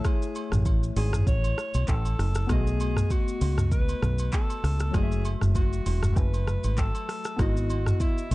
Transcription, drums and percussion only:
0.05 kick loud
0.05 cross-stick loud
0.05 high agogo medium
0.05 shaker medium
0.22 shaker medium
0.35 high agogo medium
0.35 shaker medium
0.52 cross-stick medium
0.52 mid tom loud
0.52 shaker medium
0.65 kick loud
0.65 high agogo medium
0.65 shaker medium
0.83 shaker soft
0.97 open hi-hat medium
0.97 high agogo medium
0.97 shaker medium
1.13 cross-stick loud
1.13 mid tom medium
1.13 shaker medium
1.27 kick loud
1.27 shaker medium
1.44 high agogo medium
1.44 shaker medium
1.58 cross-stick medium
1.58 shaker medium
1.74 high agogo medium
1.74 shaker medium
1.88 kick medium
1.88 clap medium
1.88 low woodblock medium
1.88 shaker medium
2.05 high agogo medium
2.05 shaker medium
2.19 cross-stick medium
2.19 open hi-hat medium
2.19 shaker soft
2.35 cross-stick medium
2.35 shaker loud
2.49 kick loud
2.49 cross-stick loud
2.49 high agogo medium
2.49 shaker medium
2.67 shaker medium
2.80 high agogo medium
2.80 shaker medium
2.97 cross-stick medium
2.97 mid tom loud
2.97 shaker medium
3.10 kick loud
3.10 high agogo medium
3.10 shaker medium
3.28 shaker medium
3.41 open hi-hat medium
3.41 high agogo medium
3.41 shaker medium
3.58 cross-stick medium
3.58 mid tom medium
3.58 shaker loud
3.71 kick loud
3.71 shaker medium
3.89 high agogo medium
3.89 shaker medium
4.02 cross-stick medium
4.02 mid tom medium
4.02 shaker medium
4.18 high agogo medium
4.18 shaker medium
4.32 kick medium
4.32 clap medium
4.32 low woodblock medium
4.32 shaker medium
4.50 high agogo medium
4.50 shaker medium
4.64 cross-stick medium
4.64 open hi-hat medium
4.64 shaker soft
4.80 cross-stick medium
4.80 shaker loud
4.94 kick loud
4.94 cross-stick loud
4.94 high agogo medium
4.94 shaker medium
5.12 shaker medium
5.25 high agogo medium
5.25 shaker medium
5.41 cross-stick medium
5.41 mid tom loud
5.41 shaker medium
5.55 kick loud
5.55 high agogo medium
5.55 shaker medium
5.73 shaker medium
5.86 open hi-hat medium
5.86 high agogo medium
5.86 shaker medium
6.03 cross-stick medium
6.03 mid tom medium
6.03 shaker loud
6.16 kick loud
6.16 shaker medium
6.34 high agogo medium
6.34 shaker medium
6.48 cross-stick medium
6.48 mid tom medium
6.48 shaker medium
6.64 high agogo medium
6.64 shaker medium
6.77 kick medium
6.77 clap medium
6.77 low woodblock medium
6.77 shaker medium
6.95 high agogo medium
6.95 shaker medium
7.09 cross-stick medium
7.09 open hi-hat medium
7.09 shaker soft
7.24 cross-stick medium
7.24 shaker loud
7.39 kick loud
7.39 cross-stick loud
7.39 high agogo medium
7.39 shaker medium
7.57 shaker medium
7.70 high agogo medium
7.70 shaker medium
7.86 cross-stick medium
7.86 mid tom loud
7.86 shaker medium
8.00 kick loud
8.00 high agogo medium
8.00 shaker medium
8.18 shaker medium
8.31 open hi-hat medium
8.31 high agogo medium
8.31 shaker medium

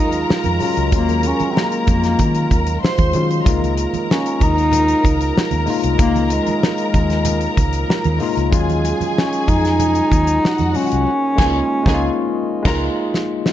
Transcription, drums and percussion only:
0.12 closed hi-hat medium
0.29 snare loud
0.29 muted conga soft
0.44 closed hi-hat soft
0.44 high conga medium
0.60 open hi-hat medium
0.60 muted conga soft
0.60 low conga medium
0.77 closed hi-hat medium
0.92 kick loud
0.92 closed hi-hat loud
1.09 closed hi-hat soft
1.09 high conga medium
1.23 closed hi-hat medium
1.23 muted conga soft
1.40 closed hi-hat medium
1.40 high conga medium
1.56 snare loud
1.56 muted conga soft
1.72 closed hi-hat medium
1.87 kick medium
1.87 closed hi-hat medium
1.87 low conga medium
2.04 snare soft
2.04 closed hi-hat medium
2.19 kick medium
2.19 closed hi-hat loud
2.19 low conga medium
2.35 closed hi-hat medium
2.51 kick medium
2.51 closed hi-hat medium
2.51 muted conga soft
2.51 high conga medium
2.66 closed hi-hat medium
2.83 snare loud
2.83 muted conga soft
2.98 kick medium
2.98 closed hi-hat soft
2.98 high conga medium
3.13 closed hi-hat medium
3.13 muted conga soft
3.13 low conga medium
3.31 closed hi-hat medium
3.46 kick loud
3.46 closed hi-hat loud
3.46 muted conga soft
3.62 closed hi-hat soft
3.62 high conga medium
3.77 closed hi-hat medium
3.77 muted conga soft
3.93 closed hi-hat soft
3.93 high conga medium
4.11 snare loud
4.26 closed hi-hat medium
4.40 kick medium
4.40 closed hi-hat medium
4.40 muted conga soft
4.40 low conga medium
4.58 closed hi-hat medium
4.72 closed hi-hat loud
4.72 muted conga soft
4.72 low conga medium
4.88 closed hi-hat medium
5.04 kick medium
5.04 closed hi-hat medium
5.04 muted conga soft
5.04 high conga medium
5.21 closed hi-hat medium
5.36 snare loud
5.36 muted conga soft
5.51 closed hi-hat soft
5.51 high conga medium
5.67 open hi-hat medium
5.67 muted conga soft
5.67 low conga medium
5.83 closed hi-hat medium
5.99 kick loud
5.99 closed hi-hat loud
6.16 closed hi-hat soft
6.16 high conga medium
6.30 closed hi-hat medium
6.47 closed hi-hat medium
6.47 high conga medium
6.63 snare loud
6.63 muted conga soft
6.78 closed hi-hat medium
6.94 kick medium
6.94 closed hi-hat medium
6.94 muted conga soft
6.94 low conga medium
7.10 snare soft
7.10 closed hi-hat medium
7.25 closed hi-hat loud
7.25 muted conga soft
7.25 low conga medium
7.41 closed hi-hat medium
7.57 kick medium
7.57 closed hi-hat medium
7.57 muted conga soft
7.57 high conga medium
7.73 closed hi-hat medium
7.90 snare loud
8.04 closed hi-hat soft
8.04 high conga medium
8.20 open hi-hat medium
8.20 low conga medium
8.37 closed hi-hat medium
8.52 kick loud
8.52 closed hi-hat loud
8.69 closed hi-hat soft
8.69 high conga medium
8.85 closed hi-hat medium
8.85 muted conga soft
9.01 closed hi-hat medium
9.01 high conga medium
9.18 snare loud
9.33 closed hi-hat medium
9.48 kick medium
9.48 closed hi-hat medium
9.48 low conga medium
9.65 snare soft
9.65 closed hi-hat medium
9.79 closed hi-hat loud
9.79 low conga medium
9.95 closed hi-hat medium
10.11 kick medium
10.11 closed hi-hat medium
10.11 high conga medium
10.27 closed hi-hat medium
10.45 snare loud
10.58 closed hi-hat soft
10.58 high conga medium
10.75 open hi-hat medium
10.75 low conga medium
10.92 closed hi-hat medium
11.38 kick loud
11.38 snare loud
11.38 crash medium
11.86 kick loud
11.86 snare loud
12.65 kick loud
12.65 snare loud
12.65 crash medium
13.14 snare medium
13.46 snare loud

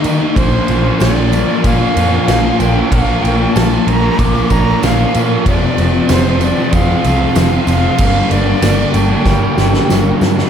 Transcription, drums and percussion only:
0.04 tambourine medium
0.04 crash medium
0.36 kick loud
0.36 crash medium
0.68 tambourine soft
0.68 crash medium
1.00 snare loud
1.00 tambourine medium
1.00 crash medium
1.32 tambourine medium
1.32 crash medium
1.64 kick loud
1.64 tambourine medium
1.64 crash medium
1.97 tambourine medium
1.97 crash medium
2.28 snare loud
2.28 tambourine medium
2.28 crash medium
2.60 tambourine medium
2.60 crash medium
2.92 kick loud
2.92 crash medium
3.25 crash medium
3.56 snare loud
3.56 tambourine medium
3.56 crash medium
3.88 crash medium
4.19 kick loud
4.19 tambourine medium
4.19 crash medium
4.50 kick medium
4.50 tambourine medium
4.50 crash medium
4.83 snare loud
4.83 tambourine medium
4.83 crash medium
5.14 tambourine medium
5.14 crash medium
5.46 kick loud
5.46 crash medium
5.78 tambourine soft
5.78 crash medium
6.09 snare loud
6.09 tambourine medium
6.09 crash medium
6.41 tambourine medium
6.41 crash medium
6.73 kick loud
6.73 tambourine medium
6.73 crash medium
7.04 tambourine medium
7.04 crash medium
7.35 snare loud
7.35 tambourine loud
7.35 crash medium
7.67 tambourine medium
7.67 crash medium
7.98 kick loud
7.98 tambourine soft
7.98 crash loud
8.31 tambourine soft
8.31 crash medium
8.62 snare loud
8.62 tambourine loud
8.62 crash medium
8.94 tambourine medium
8.94 crash medium
9.25 kick loud
9.25 snare medium
9.25 tambourine medium
9.58 snare medium
9.58 tambourine medium
9.73 snare medium
9.90 snare loud
9.90 tambourine loud
10.21 snare loud
10.21 tambourine medium
10.38 snare loud

